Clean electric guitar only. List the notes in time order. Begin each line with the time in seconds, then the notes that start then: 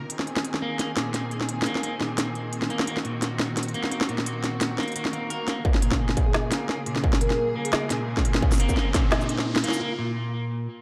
0.62 A#3
0.79 A#3
0.97 A#2
1.66 A#3
1.83 A#3
2.01 A#2
2.70 A#3
2.88 A#3
3.05 A#2
3.74 A#3
3.92 A#3
4.09 A#2
4.78 A#3
4.96 A#3
5.13 A#3
5.30 A#4
5.48 A#3
5.65 A#3
5.82 A#2
6.52 A#3
6.69 A#3
6.86 A#2
7.56 A#3
7.73 A#3
7.91 A#2
8.60 A#3
8.77 A#3
8.95 A#2
9.64 A#3
9.81 A#3
9.99 A#2